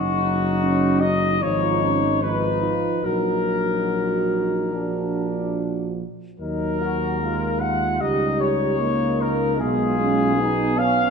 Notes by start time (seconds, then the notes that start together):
Already playing: F#1 F#3 D#4 F#4
0.61 C#4
1.00 D#4 D#5
1.40 G#1 F3 D#4 F4 C#5
1.81 C#4
2.21 F3 D#4 B4
2.61 F4
3.03 A#1 F#3 D#4 F#4 A#4
4.72 F3 D4
6.39 D#2 F#3 D#4 A#4
6.81 F#4
7.21 G#3 F4
7.59 F#5
8.00 C#2 G3 D#4 G4 D#5
8.39 C#5
8.79 A#3 D#4
9.20 A#4
9.58 B1 G#3 B3 F4 G#4
9.97 G#3 C#4
10.36 B3 D#4
10.40 D#4
10.78 C#4 F5